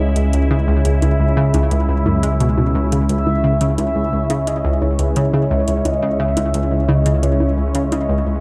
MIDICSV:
0, 0, Header, 1, 6, 480
1, 0, Start_track
1, 0, Key_signature, 4, "minor"
1, 0, Tempo, 689655
1, 233, Time_signature, 4, 2, 24, 8
1, 5848, End_track
2, 0, Start_track
2, 0, Title_t, "Soft synth lead"
2, 0, Program_c, 0, 80
2, 2154, Note_on_c, 0, 76, 121
2, 2606, Note_off_c, 0, 76, 0
2, 2633, Note_on_c, 0, 76, 115
2, 3114, Note_on_c, 0, 75, 101
2, 3124, Note_off_c, 0, 76, 0
2, 3351, Note_on_c, 0, 73, 96
2, 3362, Note_off_c, 0, 75, 0
2, 3473, Note_on_c, 0, 71, 89
2, 3484, Note_off_c, 0, 73, 0
2, 3593, Note_on_c, 0, 73, 103
2, 3604, Note_off_c, 0, 71, 0
2, 4072, Note_on_c, 0, 75, 119
2, 4083, Note_off_c, 0, 73, 0
2, 4311, Note_on_c, 0, 76, 115
2, 4322, Note_off_c, 0, 75, 0
2, 4791, Note_on_c, 0, 75, 97
2, 4801, Note_off_c, 0, 76, 0
2, 5033, Note_on_c, 0, 73, 93
2, 5043, Note_off_c, 0, 75, 0
2, 5512, Note_on_c, 0, 75, 92
2, 5522, Note_off_c, 0, 73, 0
2, 5848, Note_off_c, 0, 75, 0
2, 5848, End_track
3, 0, Start_track
3, 0, Title_t, "Ambient pad"
3, 0, Program_c, 1, 92
3, 0, Note_on_c, 1, 49, 80
3, 0, Note_on_c, 1, 56, 74
3, 0, Note_on_c, 1, 61, 76
3, 0, Note_on_c, 1, 64, 87
3, 5848, Note_off_c, 1, 49, 0
3, 5848, Note_off_c, 1, 56, 0
3, 5848, Note_off_c, 1, 61, 0
3, 5848, Note_off_c, 1, 64, 0
3, 5848, End_track
4, 0, Start_track
4, 0, Title_t, "Analog synth bass"
4, 0, Program_c, 2, 38
4, 0, Note_on_c, 2, 37, 86
4, 4049, Note_off_c, 2, 37, 0
4, 4072, Note_on_c, 2, 37, 91
4, 5848, Note_off_c, 2, 37, 0
4, 5848, End_track
5, 0, Start_track
5, 0, Title_t, "Synth arpeggio sound"
5, 0, Program_c, 3, 84
5, 0, Note_on_c, 3, 37, 74
5, 71, Note_off_c, 3, 37, 0
5, 112, Note_on_c, 3, 37, 77
5, 190, Note_off_c, 3, 37, 0
5, 234, Note_on_c, 3, 37, 84
5, 311, Note_off_c, 3, 37, 0
5, 353, Note_on_c, 3, 49, 100
5, 467, Note_off_c, 3, 49, 0
5, 472, Note_on_c, 3, 37, 95
5, 551, Note_off_c, 3, 37, 0
5, 594, Note_on_c, 3, 37, 76
5, 671, Note_off_c, 3, 37, 0
5, 712, Note_on_c, 3, 37, 84
5, 791, Note_off_c, 3, 37, 0
5, 832, Note_on_c, 3, 37, 74
5, 910, Note_off_c, 3, 37, 0
5, 953, Note_on_c, 3, 49, 103
5, 1067, Note_off_c, 3, 49, 0
5, 1073, Note_on_c, 3, 37, 99
5, 1151, Note_off_c, 3, 37, 0
5, 1193, Note_on_c, 3, 37, 81
5, 1271, Note_off_c, 3, 37, 0
5, 1313, Note_on_c, 3, 37, 75
5, 1391, Note_off_c, 3, 37, 0
5, 1433, Note_on_c, 3, 42, 79
5, 1547, Note_off_c, 3, 42, 0
5, 1552, Note_on_c, 3, 56, 73
5, 1599, Note_off_c, 3, 56, 0
5, 1673, Note_on_c, 3, 47, 83
5, 1720, Note_off_c, 3, 47, 0
5, 1793, Note_on_c, 3, 47, 75
5, 1907, Note_off_c, 3, 47, 0
5, 1913, Note_on_c, 3, 37, 99
5, 1991, Note_off_c, 3, 37, 0
5, 2034, Note_on_c, 3, 49, 76
5, 2080, Note_off_c, 3, 49, 0
5, 2153, Note_on_c, 3, 37, 84
5, 2231, Note_off_c, 3, 37, 0
5, 2273, Note_on_c, 3, 37, 71
5, 2351, Note_off_c, 3, 37, 0
5, 2393, Note_on_c, 3, 49, 97
5, 2505, Note_off_c, 3, 49, 0
5, 2514, Note_on_c, 3, 49, 95
5, 2627, Note_off_c, 3, 49, 0
5, 2633, Note_on_c, 3, 37, 100
5, 2711, Note_off_c, 3, 37, 0
5, 2754, Note_on_c, 3, 37, 79
5, 2832, Note_off_c, 3, 37, 0
5, 2873, Note_on_c, 3, 37, 73
5, 2951, Note_off_c, 3, 37, 0
5, 2994, Note_on_c, 3, 49, 102
5, 3105, Note_off_c, 3, 49, 0
5, 3114, Note_on_c, 3, 49, 98
5, 3227, Note_off_c, 3, 49, 0
5, 3233, Note_on_c, 3, 37, 104
5, 3311, Note_off_c, 3, 37, 0
5, 3354, Note_on_c, 3, 37, 75
5, 3431, Note_off_c, 3, 37, 0
5, 3474, Note_on_c, 3, 37, 78
5, 3551, Note_off_c, 3, 37, 0
5, 3594, Note_on_c, 3, 49, 103
5, 3705, Note_off_c, 3, 49, 0
5, 3714, Note_on_c, 3, 49, 103
5, 3827, Note_off_c, 3, 49, 0
5, 3834, Note_on_c, 3, 37, 102
5, 3912, Note_off_c, 3, 37, 0
5, 3954, Note_on_c, 3, 37, 72
5, 4031, Note_off_c, 3, 37, 0
5, 4073, Note_on_c, 3, 37, 83
5, 4151, Note_off_c, 3, 37, 0
5, 4193, Note_on_c, 3, 49, 99
5, 4304, Note_off_c, 3, 49, 0
5, 4313, Note_on_c, 3, 49, 98
5, 4427, Note_off_c, 3, 49, 0
5, 4433, Note_on_c, 3, 37, 97
5, 4511, Note_off_c, 3, 37, 0
5, 4553, Note_on_c, 3, 37, 84
5, 4631, Note_off_c, 3, 37, 0
5, 4672, Note_on_c, 3, 37, 75
5, 4750, Note_off_c, 3, 37, 0
5, 4792, Note_on_c, 3, 49, 105
5, 4904, Note_off_c, 3, 49, 0
5, 4912, Note_on_c, 3, 49, 101
5, 5026, Note_off_c, 3, 49, 0
5, 5031, Note_on_c, 3, 37, 104
5, 5110, Note_off_c, 3, 37, 0
5, 5152, Note_on_c, 3, 37, 75
5, 5230, Note_off_c, 3, 37, 0
5, 5272, Note_on_c, 3, 37, 77
5, 5351, Note_off_c, 3, 37, 0
5, 5393, Note_on_c, 3, 49, 100
5, 5504, Note_off_c, 3, 49, 0
5, 5513, Note_on_c, 3, 49, 105
5, 5627, Note_off_c, 3, 49, 0
5, 5633, Note_on_c, 3, 37, 104
5, 5711, Note_off_c, 3, 37, 0
5, 5753, Note_on_c, 3, 37, 75
5, 5831, Note_off_c, 3, 37, 0
5, 5848, End_track
6, 0, Start_track
6, 0, Title_t, "Drums"
6, 111, Note_on_c, 9, 42, 58
6, 181, Note_off_c, 9, 42, 0
6, 231, Note_on_c, 9, 42, 48
6, 301, Note_off_c, 9, 42, 0
6, 352, Note_on_c, 9, 61, 44
6, 421, Note_off_c, 9, 61, 0
6, 592, Note_on_c, 9, 42, 62
6, 661, Note_off_c, 9, 42, 0
6, 712, Note_on_c, 9, 42, 52
6, 712, Note_on_c, 9, 61, 43
6, 782, Note_off_c, 9, 42, 0
6, 782, Note_off_c, 9, 61, 0
6, 1072, Note_on_c, 9, 42, 64
6, 1072, Note_on_c, 9, 61, 44
6, 1141, Note_off_c, 9, 42, 0
6, 1141, Note_off_c, 9, 61, 0
6, 1192, Note_on_c, 9, 42, 49
6, 1262, Note_off_c, 9, 42, 0
6, 1433, Note_on_c, 9, 61, 45
6, 1503, Note_off_c, 9, 61, 0
6, 1554, Note_on_c, 9, 42, 61
6, 1623, Note_off_c, 9, 42, 0
6, 1673, Note_on_c, 9, 42, 51
6, 1743, Note_off_c, 9, 42, 0
6, 1794, Note_on_c, 9, 61, 42
6, 1863, Note_off_c, 9, 61, 0
6, 2034, Note_on_c, 9, 42, 60
6, 2103, Note_off_c, 9, 42, 0
6, 2153, Note_on_c, 9, 42, 51
6, 2223, Note_off_c, 9, 42, 0
6, 2274, Note_on_c, 9, 61, 46
6, 2343, Note_off_c, 9, 61, 0
6, 2512, Note_on_c, 9, 42, 68
6, 2581, Note_off_c, 9, 42, 0
6, 2632, Note_on_c, 9, 42, 52
6, 2632, Note_on_c, 9, 61, 45
6, 2702, Note_off_c, 9, 42, 0
6, 2702, Note_off_c, 9, 61, 0
6, 2992, Note_on_c, 9, 42, 64
6, 2992, Note_on_c, 9, 61, 46
6, 3062, Note_off_c, 9, 42, 0
6, 3062, Note_off_c, 9, 61, 0
6, 3113, Note_on_c, 9, 42, 53
6, 3182, Note_off_c, 9, 42, 0
6, 3353, Note_on_c, 9, 61, 44
6, 3422, Note_off_c, 9, 61, 0
6, 3473, Note_on_c, 9, 42, 64
6, 3542, Note_off_c, 9, 42, 0
6, 3592, Note_on_c, 9, 42, 54
6, 3662, Note_off_c, 9, 42, 0
6, 3712, Note_on_c, 9, 61, 45
6, 3782, Note_off_c, 9, 61, 0
6, 3951, Note_on_c, 9, 42, 62
6, 4021, Note_off_c, 9, 42, 0
6, 4073, Note_on_c, 9, 42, 54
6, 4073, Note_on_c, 9, 61, 44
6, 4143, Note_off_c, 9, 42, 0
6, 4143, Note_off_c, 9, 61, 0
6, 4432, Note_on_c, 9, 42, 70
6, 4432, Note_on_c, 9, 61, 48
6, 4502, Note_off_c, 9, 42, 0
6, 4502, Note_off_c, 9, 61, 0
6, 4553, Note_on_c, 9, 42, 56
6, 4622, Note_off_c, 9, 42, 0
6, 4792, Note_on_c, 9, 61, 46
6, 4862, Note_off_c, 9, 61, 0
6, 4913, Note_on_c, 9, 42, 70
6, 4982, Note_off_c, 9, 42, 0
6, 5033, Note_on_c, 9, 42, 51
6, 5102, Note_off_c, 9, 42, 0
6, 5153, Note_on_c, 9, 61, 43
6, 5222, Note_off_c, 9, 61, 0
6, 5392, Note_on_c, 9, 42, 64
6, 5461, Note_off_c, 9, 42, 0
6, 5513, Note_on_c, 9, 42, 54
6, 5513, Note_on_c, 9, 61, 48
6, 5582, Note_off_c, 9, 42, 0
6, 5582, Note_off_c, 9, 61, 0
6, 5848, End_track
0, 0, End_of_file